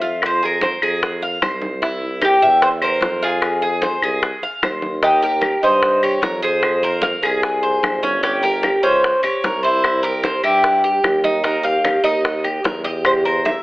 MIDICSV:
0, 0, Header, 1, 5, 480
1, 0, Start_track
1, 0, Tempo, 401338
1, 255, Time_signature, 4, 2, 24, 8
1, 16300, End_track
2, 0, Start_track
2, 0, Title_t, "Cuban tres"
2, 0, Program_c, 0, 25
2, 0, Note_on_c, 0, 76, 94
2, 230, Note_off_c, 0, 76, 0
2, 308, Note_on_c, 0, 72, 90
2, 506, Note_off_c, 0, 72, 0
2, 542, Note_on_c, 0, 70, 66
2, 1909, Note_off_c, 0, 70, 0
2, 2686, Note_on_c, 0, 67, 88
2, 3141, Note_on_c, 0, 72, 104
2, 3163, Note_off_c, 0, 67, 0
2, 3205, Note_off_c, 0, 72, 0
2, 3399, Note_on_c, 0, 70, 85
2, 3872, Note_on_c, 0, 68, 77
2, 3879, Note_off_c, 0, 70, 0
2, 5492, Note_off_c, 0, 68, 0
2, 6025, Note_on_c, 0, 67, 75
2, 6241, Note_off_c, 0, 67, 0
2, 6258, Note_on_c, 0, 70, 71
2, 6739, Note_off_c, 0, 70, 0
2, 6744, Note_on_c, 0, 72, 75
2, 7217, Note_off_c, 0, 72, 0
2, 7222, Note_on_c, 0, 73, 86
2, 7662, Note_off_c, 0, 73, 0
2, 7703, Note_on_c, 0, 72, 82
2, 8176, Note_off_c, 0, 72, 0
2, 8181, Note_on_c, 0, 70, 78
2, 8669, Note_off_c, 0, 70, 0
2, 8674, Note_on_c, 0, 68, 78
2, 9573, Note_off_c, 0, 68, 0
2, 9849, Note_on_c, 0, 67, 74
2, 10077, Note_on_c, 0, 70, 80
2, 10096, Note_off_c, 0, 67, 0
2, 10555, Note_off_c, 0, 70, 0
2, 10560, Note_on_c, 0, 72, 84
2, 11033, Note_off_c, 0, 72, 0
2, 11038, Note_on_c, 0, 73, 90
2, 11511, Note_off_c, 0, 73, 0
2, 11516, Note_on_c, 0, 72, 82
2, 11989, Note_off_c, 0, 72, 0
2, 11994, Note_on_c, 0, 70, 83
2, 12480, Note_on_c, 0, 67, 80
2, 12496, Note_off_c, 0, 70, 0
2, 13398, Note_off_c, 0, 67, 0
2, 13678, Note_on_c, 0, 70, 84
2, 13920, Note_off_c, 0, 70, 0
2, 13925, Note_on_c, 0, 77, 82
2, 14398, Note_off_c, 0, 77, 0
2, 14403, Note_on_c, 0, 75, 92
2, 15349, Note_off_c, 0, 75, 0
2, 15363, Note_on_c, 0, 75, 89
2, 15430, Note_off_c, 0, 75, 0
2, 15620, Note_on_c, 0, 72, 87
2, 15684, Note_off_c, 0, 72, 0
2, 15851, Note_on_c, 0, 70, 82
2, 16300, Note_off_c, 0, 70, 0
2, 16300, End_track
3, 0, Start_track
3, 0, Title_t, "Cuban tres"
3, 0, Program_c, 1, 25
3, 17, Note_on_c, 1, 65, 82
3, 481, Note_off_c, 1, 65, 0
3, 510, Note_on_c, 1, 68, 65
3, 735, Note_off_c, 1, 68, 0
3, 748, Note_on_c, 1, 72, 65
3, 974, Note_off_c, 1, 72, 0
3, 988, Note_on_c, 1, 68, 72
3, 1446, Note_off_c, 1, 68, 0
3, 1464, Note_on_c, 1, 77, 74
3, 1692, Note_off_c, 1, 77, 0
3, 1700, Note_on_c, 1, 72, 64
3, 2162, Note_off_c, 1, 72, 0
3, 2176, Note_on_c, 1, 64, 71
3, 2639, Note_off_c, 1, 64, 0
3, 2652, Note_on_c, 1, 67, 73
3, 2885, Note_off_c, 1, 67, 0
3, 2898, Note_on_c, 1, 76, 79
3, 3360, Note_off_c, 1, 76, 0
3, 3373, Note_on_c, 1, 72, 77
3, 3838, Note_off_c, 1, 72, 0
3, 3857, Note_on_c, 1, 65, 91
3, 4320, Note_off_c, 1, 65, 0
3, 4330, Note_on_c, 1, 68, 74
3, 4563, Note_off_c, 1, 68, 0
3, 4579, Note_on_c, 1, 72, 67
3, 4807, Note_off_c, 1, 72, 0
3, 4824, Note_on_c, 1, 68, 71
3, 5283, Note_off_c, 1, 68, 0
3, 5299, Note_on_c, 1, 77, 68
3, 5527, Note_off_c, 1, 77, 0
3, 5538, Note_on_c, 1, 72, 66
3, 5999, Note_off_c, 1, 72, 0
3, 6013, Note_on_c, 1, 63, 76
3, 6244, Note_off_c, 1, 63, 0
3, 6248, Note_on_c, 1, 67, 70
3, 6714, Note_off_c, 1, 67, 0
3, 6732, Note_on_c, 1, 63, 79
3, 7196, Note_off_c, 1, 63, 0
3, 7210, Note_on_c, 1, 67, 69
3, 7442, Note_off_c, 1, 67, 0
3, 7449, Note_on_c, 1, 70, 63
3, 7679, Note_off_c, 1, 70, 0
3, 7684, Note_on_c, 1, 68, 85
3, 8151, Note_off_c, 1, 68, 0
3, 8168, Note_on_c, 1, 72, 72
3, 8399, Note_off_c, 1, 72, 0
3, 8404, Note_on_c, 1, 77, 66
3, 8639, Note_off_c, 1, 77, 0
3, 8643, Note_on_c, 1, 68, 76
3, 9111, Note_off_c, 1, 68, 0
3, 9123, Note_on_c, 1, 72, 71
3, 9591, Note_off_c, 1, 72, 0
3, 9605, Note_on_c, 1, 61, 92
3, 9828, Note_off_c, 1, 61, 0
3, 9842, Note_on_c, 1, 61, 75
3, 10078, Note_off_c, 1, 61, 0
3, 10086, Note_on_c, 1, 67, 75
3, 10553, Note_off_c, 1, 67, 0
3, 10562, Note_on_c, 1, 61, 90
3, 11030, Note_off_c, 1, 61, 0
3, 11047, Note_on_c, 1, 67, 67
3, 11281, Note_off_c, 1, 67, 0
3, 11288, Note_on_c, 1, 70, 70
3, 11521, Note_off_c, 1, 70, 0
3, 11533, Note_on_c, 1, 64, 81
3, 11997, Note_off_c, 1, 64, 0
3, 12008, Note_on_c, 1, 67, 66
3, 12242, Note_off_c, 1, 67, 0
3, 12253, Note_on_c, 1, 72, 74
3, 12482, Note_off_c, 1, 72, 0
3, 12487, Note_on_c, 1, 64, 70
3, 12954, Note_off_c, 1, 64, 0
3, 12963, Note_on_c, 1, 67, 71
3, 13432, Note_off_c, 1, 67, 0
3, 13444, Note_on_c, 1, 63, 87
3, 13671, Note_off_c, 1, 63, 0
3, 13685, Note_on_c, 1, 63, 76
3, 13913, Note_on_c, 1, 67, 74
3, 13921, Note_off_c, 1, 63, 0
3, 14388, Note_off_c, 1, 67, 0
3, 14395, Note_on_c, 1, 63, 87
3, 14869, Note_off_c, 1, 63, 0
3, 14881, Note_on_c, 1, 67, 70
3, 15116, Note_off_c, 1, 67, 0
3, 15121, Note_on_c, 1, 70, 68
3, 15356, Note_off_c, 1, 70, 0
3, 15361, Note_on_c, 1, 67, 79
3, 15833, Note_off_c, 1, 67, 0
3, 15851, Note_on_c, 1, 72, 65
3, 16083, Note_off_c, 1, 72, 0
3, 16088, Note_on_c, 1, 76, 69
3, 16300, Note_off_c, 1, 76, 0
3, 16300, End_track
4, 0, Start_track
4, 0, Title_t, "Tuba"
4, 0, Program_c, 2, 58
4, 0, Note_on_c, 2, 41, 82
4, 902, Note_off_c, 2, 41, 0
4, 976, Note_on_c, 2, 41, 82
4, 1646, Note_off_c, 2, 41, 0
4, 1696, Note_on_c, 2, 36, 83
4, 2822, Note_off_c, 2, 36, 0
4, 2890, Note_on_c, 2, 40, 97
4, 3563, Note_off_c, 2, 40, 0
4, 3611, Note_on_c, 2, 41, 91
4, 4738, Note_off_c, 2, 41, 0
4, 4802, Note_on_c, 2, 36, 90
4, 5176, Note_off_c, 2, 36, 0
4, 5529, Note_on_c, 2, 39, 93
4, 6657, Note_off_c, 2, 39, 0
4, 6731, Note_on_c, 2, 43, 100
4, 7402, Note_off_c, 2, 43, 0
4, 7449, Note_on_c, 2, 41, 95
4, 8576, Note_off_c, 2, 41, 0
4, 8651, Note_on_c, 2, 36, 87
4, 9321, Note_off_c, 2, 36, 0
4, 9370, Note_on_c, 2, 31, 96
4, 10497, Note_off_c, 2, 31, 0
4, 10567, Note_on_c, 2, 37, 97
4, 10938, Note_off_c, 2, 37, 0
4, 11282, Note_on_c, 2, 36, 93
4, 12414, Note_off_c, 2, 36, 0
4, 12476, Note_on_c, 2, 43, 92
4, 13155, Note_off_c, 2, 43, 0
4, 13202, Note_on_c, 2, 39, 89
4, 14335, Note_off_c, 2, 39, 0
4, 14393, Note_on_c, 2, 39, 95
4, 15075, Note_off_c, 2, 39, 0
4, 15120, Note_on_c, 2, 40, 98
4, 16256, Note_off_c, 2, 40, 0
4, 16300, End_track
5, 0, Start_track
5, 0, Title_t, "Drums"
5, 16, Note_on_c, 9, 63, 33
5, 135, Note_off_c, 9, 63, 0
5, 259, Note_on_c, 9, 63, 31
5, 263, Note_on_c, 9, 75, 61
5, 273, Note_on_c, 9, 60, 62
5, 378, Note_off_c, 9, 63, 0
5, 382, Note_off_c, 9, 75, 0
5, 392, Note_off_c, 9, 60, 0
5, 506, Note_on_c, 9, 63, 31
5, 518, Note_on_c, 9, 60, 33
5, 625, Note_off_c, 9, 63, 0
5, 637, Note_off_c, 9, 60, 0
5, 734, Note_on_c, 9, 63, 86
5, 753, Note_on_c, 9, 60, 46
5, 854, Note_off_c, 9, 63, 0
5, 872, Note_off_c, 9, 60, 0
5, 980, Note_on_c, 9, 63, 33
5, 983, Note_on_c, 9, 75, 71
5, 1099, Note_off_c, 9, 63, 0
5, 1102, Note_off_c, 9, 75, 0
5, 1226, Note_on_c, 9, 63, 32
5, 1230, Note_on_c, 9, 60, 74
5, 1345, Note_off_c, 9, 63, 0
5, 1349, Note_off_c, 9, 60, 0
5, 1456, Note_on_c, 9, 63, 31
5, 1466, Note_on_c, 9, 60, 30
5, 1576, Note_off_c, 9, 63, 0
5, 1586, Note_off_c, 9, 60, 0
5, 1701, Note_on_c, 9, 60, 73
5, 1701, Note_on_c, 9, 61, 78
5, 1703, Note_on_c, 9, 63, 80
5, 1703, Note_on_c, 9, 75, 61
5, 1820, Note_off_c, 9, 60, 0
5, 1820, Note_off_c, 9, 61, 0
5, 1822, Note_off_c, 9, 63, 0
5, 1822, Note_off_c, 9, 75, 0
5, 1933, Note_on_c, 9, 63, 85
5, 1946, Note_on_c, 9, 60, 35
5, 2053, Note_off_c, 9, 63, 0
5, 2065, Note_off_c, 9, 60, 0
5, 2179, Note_on_c, 9, 63, 36
5, 2187, Note_on_c, 9, 60, 63
5, 2299, Note_off_c, 9, 63, 0
5, 2306, Note_off_c, 9, 60, 0
5, 2412, Note_on_c, 9, 63, 31
5, 2531, Note_off_c, 9, 63, 0
5, 2650, Note_on_c, 9, 63, 89
5, 2659, Note_on_c, 9, 75, 64
5, 2663, Note_on_c, 9, 60, 53
5, 2769, Note_off_c, 9, 63, 0
5, 2779, Note_off_c, 9, 75, 0
5, 2782, Note_off_c, 9, 60, 0
5, 2886, Note_on_c, 9, 63, 32
5, 3006, Note_off_c, 9, 63, 0
5, 3131, Note_on_c, 9, 63, 33
5, 3136, Note_on_c, 9, 60, 75
5, 3251, Note_off_c, 9, 63, 0
5, 3255, Note_off_c, 9, 60, 0
5, 3368, Note_on_c, 9, 75, 58
5, 3369, Note_on_c, 9, 63, 34
5, 3488, Note_off_c, 9, 75, 0
5, 3489, Note_off_c, 9, 63, 0
5, 3596, Note_on_c, 9, 63, 80
5, 3616, Note_on_c, 9, 60, 65
5, 3616, Note_on_c, 9, 61, 82
5, 3716, Note_off_c, 9, 63, 0
5, 3736, Note_off_c, 9, 60, 0
5, 3736, Note_off_c, 9, 61, 0
5, 3837, Note_on_c, 9, 63, 33
5, 3957, Note_off_c, 9, 63, 0
5, 4083, Note_on_c, 9, 63, 34
5, 4088, Note_on_c, 9, 75, 58
5, 4093, Note_on_c, 9, 60, 64
5, 4203, Note_off_c, 9, 63, 0
5, 4207, Note_off_c, 9, 75, 0
5, 4212, Note_off_c, 9, 60, 0
5, 4324, Note_on_c, 9, 63, 33
5, 4335, Note_on_c, 9, 60, 31
5, 4444, Note_off_c, 9, 63, 0
5, 4455, Note_off_c, 9, 60, 0
5, 4565, Note_on_c, 9, 63, 92
5, 4577, Note_on_c, 9, 60, 51
5, 4684, Note_off_c, 9, 63, 0
5, 4697, Note_off_c, 9, 60, 0
5, 4809, Note_on_c, 9, 63, 29
5, 4813, Note_on_c, 9, 75, 67
5, 4929, Note_off_c, 9, 63, 0
5, 4933, Note_off_c, 9, 75, 0
5, 5050, Note_on_c, 9, 63, 33
5, 5056, Note_on_c, 9, 60, 71
5, 5170, Note_off_c, 9, 63, 0
5, 5176, Note_off_c, 9, 60, 0
5, 5287, Note_on_c, 9, 63, 30
5, 5297, Note_on_c, 9, 60, 31
5, 5407, Note_off_c, 9, 63, 0
5, 5416, Note_off_c, 9, 60, 0
5, 5532, Note_on_c, 9, 63, 82
5, 5536, Note_on_c, 9, 75, 62
5, 5537, Note_on_c, 9, 60, 72
5, 5537, Note_on_c, 9, 61, 79
5, 5651, Note_off_c, 9, 63, 0
5, 5655, Note_off_c, 9, 75, 0
5, 5657, Note_off_c, 9, 60, 0
5, 5657, Note_off_c, 9, 61, 0
5, 5767, Note_on_c, 9, 63, 85
5, 5775, Note_on_c, 9, 60, 33
5, 5887, Note_off_c, 9, 63, 0
5, 5894, Note_off_c, 9, 60, 0
5, 6009, Note_on_c, 9, 63, 33
5, 6012, Note_on_c, 9, 60, 67
5, 6128, Note_off_c, 9, 63, 0
5, 6131, Note_off_c, 9, 60, 0
5, 6249, Note_on_c, 9, 63, 36
5, 6369, Note_off_c, 9, 63, 0
5, 6474, Note_on_c, 9, 63, 80
5, 6486, Note_on_c, 9, 60, 48
5, 6489, Note_on_c, 9, 75, 65
5, 6594, Note_off_c, 9, 63, 0
5, 6605, Note_off_c, 9, 60, 0
5, 6608, Note_off_c, 9, 75, 0
5, 6720, Note_on_c, 9, 63, 33
5, 6840, Note_off_c, 9, 63, 0
5, 6966, Note_on_c, 9, 63, 28
5, 6968, Note_on_c, 9, 60, 66
5, 7085, Note_off_c, 9, 63, 0
5, 7087, Note_off_c, 9, 60, 0
5, 7205, Note_on_c, 9, 63, 28
5, 7211, Note_on_c, 9, 75, 55
5, 7325, Note_off_c, 9, 63, 0
5, 7330, Note_off_c, 9, 75, 0
5, 7439, Note_on_c, 9, 63, 86
5, 7449, Note_on_c, 9, 60, 68
5, 7449, Note_on_c, 9, 61, 78
5, 7558, Note_off_c, 9, 63, 0
5, 7569, Note_off_c, 9, 60, 0
5, 7569, Note_off_c, 9, 61, 0
5, 7680, Note_on_c, 9, 63, 35
5, 7799, Note_off_c, 9, 63, 0
5, 7923, Note_on_c, 9, 63, 33
5, 7927, Note_on_c, 9, 60, 60
5, 7933, Note_on_c, 9, 75, 58
5, 8043, Note_off_c, 9, 63, 0
5, 8046, Note_off_c, 9, 60, 0
5, 8053, Note_off_c, 9, 75, 0
5, 8162, Note_on_c, 9, 63, 36
5, 8167, Note_on_c, 9, 60, 32
5, 8282, Note_off_c, 9, 63, 0
5, 8286, Note_off_c, 9, 60, 0
5, 8392, Note_on_c, 9, 63, 93
5, 8404, Note_on_c, 9, 60, 51
5, 8512, Note_off_c, 9, 63, 0
5, 8523, Note_off_c, 9, 60, 0
5, 8638, Note_on_c, 9, 63, 33
5, 8653, Note_on_c, 9, 75, 69
5, 8757, Note_off_c, 9, 63, 0
5, 8772, Note_off_c, 9, 75, 0
5, 8881, Note_on_c, 9, 63, 32
5, 8890, Note_on_c, 9, 60, 75
5, 9001, Note_off_c, 9, 63, 0
5, 9009, Note_off_c, 9, 60, 0
5, 9126, Note_on_c, 9, 63, 28
5, 9133, Note_on_c, 9, 60, 36
5, 9246, Note_off_c, 9, 63, 0
5, 9253, Note_off_c, 9, 60, 0
5, 9365, Note_on_c, 9, 63, 87
5, 9374, Note_on_c, 9, 60, 70
5, 9374, Note_on_c, 9, 61, 76
5, 9377, Note_on_c, 9, 75, 60
5, 9485, Note_off_c, 9, 63, 0
5, 9494, Note_off_c, 9, 60, 0
5, 9494, Note_off_c, 9, 61, 0
5, 9497, Note_off_c, 9, 75, 0
5, 9600, Note_on_c, 9, 63, 80
5, 9614, Note_on_c, 9, 60, 31
5, 9719, Note_off_c, 9, 63, 0
5, 9733, Note_off_c, 9, 60, 0
5, 9845, Note_on_c, 9, 63, 32
5, 9849, Note_on_c, 9, 60, 61
5, 9964, Note_off_c, 9, 63, 0
5, 9969, Note_off_c, 9, 60, 0
5, 10085, Note_on_c, 9, 63, 32
5, 10205, Note_off_c, 9, 63, 0
5, 10321, Note_on_c, 9, 63, 86
5, 10326, Note_on_c, 9, 60, 49
5, 10337, Note_on_c, 9, 75, 62
5, 10441, Note_off_c, 9, 63, 0
5, 10445, Note_off_c, 9, 60, 0
5, 10457, Note_off_c, 9, 75, 0
5, 10570, Note_on_c, 9, 63, 31
5, 10690, Note_off_c, 9, 63, 0
5, 10811, Note_on_c, 9, 63, 30
5, 10815, Note_on_c, 9, 60, 73
5, 10930, Note_off_c, 9, 63, 0
5, 10935, Note_off_c, 9, 60, 0
5, 11047, Note_on_c, 9, 75, 62
5, 11054, Note_on_c, 9, 63, 32
5, 11166, Note_off_c, 9, 75, 0
5, 11174, Note_off_c, 9, 63, 0
5, 11290, Note_on_c, 9, 63, 85
5, 11293, Note_on_c, 9, 60, 71
5, 11293, Note_on_c, 9, 61, 72
5, 11409, Note_off_c, 9, 63, 0
5, 11413, Note_off_c, 9, 60, 0
5, 11413, Note_off_c, 9, 61, 0
5, 11525, Note_on_c, 9, 63, 33
5, 11644, Note_off_c, 9, 63, 0
5, 11765, Note_on_c, 9, 63, 33
5, 11767, Note_on_c, 9, 75, 68
5, 11773, Note_on_c, 9, 60, 60
5, 11885, Note_off_c, 9, 63, 0
5, 11886, Note_off_c, 9, 75, 0
5, 11893, Note_off_c, 9, 60, 0
5, 12003, Note_on_c, 9, 63, 33
5, 12015, Note_on_c, 9, 60, 33
5, 12122, Note_off_c, 9, 63, 0
5, 12135, Note_off_c, 9, 60, 0
5, 12241, Note_on_c, 9, 63, 88
5, 12251, Note_on_c, 9, 60, 54
5, 12361, Note_off_c, 9, 63, 0
5, 12371, Note_off_c, 9, 60, 0
5, 12484, Note_on_c, 9, 75, 59
5, 12487, Note_on_c, 9, 63, 31
5, 12603, Note_off_c, 9, 75, 0
5, 12606, Note_off_c, 9, 63, 0
5, 12724, Note_on_c, 9, 60, 79
5, 12725, Note_on_c, 9, 63, 31
5, 12844, Note_off_c, 9, 60, 0
5, 12844, Note_off_c, 9, 63, 0
5, 12957, Note_on_c, 9, 63, 31
5, 12966, Note_on_c, 9, 60, 32
5, 13076, Note_off_c, 9, 63, 0
5, 13086, Note_off_c, 9, 60, 0
5, 13200, Note_on_c, 9, 63, 87
5, 13207, Note_on_c, 9, 60, 63
5, 13207, Note_on_c, 9, 61, 81
5, 13207, Note_on_c, 9, 75, 63
5, 13319, Note_off_c, 9, 63, 0
5, 13327, Note_off_c, 9, 60, 0
5, 13327, Note_off_c, 9, 61, 0
5, 13327, Note_off_c, 9, 75, 0
5, 13440, Note_on_c, 9, 63, 75
5, 13445, Note_on_c, 9, 60, 33
5, 13560, Note_off_c, 9, 63, 0
5, 13565, Note_off_c, 9, 60, 0
5, 13685, Note_on_c, 9, 60, 69
5, 13690, Note_on_c, 9, 63, 35
5, 13805, Note_off_c, 9, 60, 0
5, 13810, Note_off_c, 9, 63, 0
5, 13924, Note_on_c, 9, 63, 34
5, 14044, Note_off_c, 9, 63, 0
5, 14167, Note_on_c, 9, 63, 84
5, 14168, Note_on_c, 9, 75, 70
5, 14172, Note_on_c, 9, 60, 50
5, 14287, Note_off_c, 9, 63, 0
5, 14287, Note_off_c, 9, 75, 0
5, 14291, Note_off_c, 9, 60, 0
5, 14419, Note_on_c, 9, 63, 33
5, 14539, Note_off_c, 9, 63, 0
5, 14650, Note_on_c, 9, 60, 77
5, 14657, Note_on_c, 9, 63, 32
5, 14770, Note_off_c, 9, 60, 0
5, 14777, Note_off_c, 9, 63, 0
5, 14884, Note_on_c, 9, 75, 62
5, 14889, Note_on_c, 9, 63, 30
5, 15004, Note_off_c, 9, 75, 0
5, 15009, Note_off_c, 9, 63, 0
5, 15130, Note_on_c, 9, 63, 85
5, 15133, Note_on_c, 9, 60, 65
5, 15133, Note_on_c, 9, 61, 88
5, 15250, Note_off_c, 9, 63, 0
5, 15253, Note_off_c, 9, 60, 0
5, 15253, Note_off_c, 9, 61, 0
5, 15372, Note_on_c, 9, 63, 34
5, 15492, Note_off_c, 9, 63, 0
5, 15605, Note_on_c, 9, 60, 69
5, 15611, Note_on_c, 9, 75, 70
5, 15612, Note_on_c, 9, 63, 32
5, 15725, Note_off_c, 9, 60, 0
5, 15730, Note_off_c, 9, 75, 0
5, 15732, Note_off_c, 9, 63, 0
5, 15850, Note_on_c, 9, 63, 31
5, 15852, Note_on_c, 9, 60, 34
5, 15969, Note_off_c, 9, 63, 0
5, 15971, Note_off_c, 9, 60, 0
5, 16091, Note_on_c, 9, 60, 51
5, 16097, Note_on_c, 9, 63, 93
5, 16211, Note_off_c, 9, 60, 0
5, 16217, Note_off_c, 9, 63, 0
5, 16300, End_track
0, 0, End_of_file